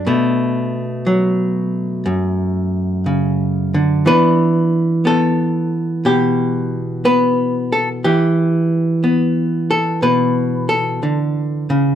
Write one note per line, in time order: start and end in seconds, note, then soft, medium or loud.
0.00 3.09 D4 soft
0.07 2.05 B2 medium
0.07 4.05 A3 medium
1.06 4.01 F#3 medium
2.06 4.05 F#2 medium
3.06 3.73 C#3 medium
3.74 4.05 D3 medium
4.06 8.03 E3 medium
4.06 5.05 B3 soft
4.06 8.00 D4 soft
4.06 5.05 B4 loud
5.05 7.04 B3 medium
5.05 6.05 A4 medium
6.05 8.03 B2 medium
6.05 7.04 G4 medium
7.05 9.03 B3 medium
7.05 7.72 B4 medium
7.72 7.88 A4 medium
8.04 11.95 E3 medium
8.04 9.70 G4 medium
9.04 11.95 B3 medium
9.71 10.02 A4 medium
10.02 11.02 B2 medium
10.02 10.69 B4 medium
10.69 11.95 A4 medium
11.03 11.69 D3 medium
11.70 11.95 C#3 medium